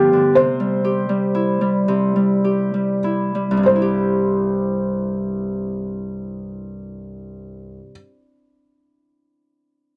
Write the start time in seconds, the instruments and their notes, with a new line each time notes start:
Already playing: harp G2 D3 F3 A3 B3 D4, felt piano G4
0.13 harp D3
0.35 harp C3, felt piano C5
0.60 harp G3
0.85 harp G4
1.09 harp G3
1.35 harp E4
1.61 harp G3
1.88 harp C3
2.16 harp G3
2.44 harp G4
2.74 harp G3
3.04 harp E4
3.35 harp G3
3.51 harp C2
3.57 harp G2
3.63 harp C3, felt piano C5
3.69 harp G3
3.76 harp E4
3.82 harp G4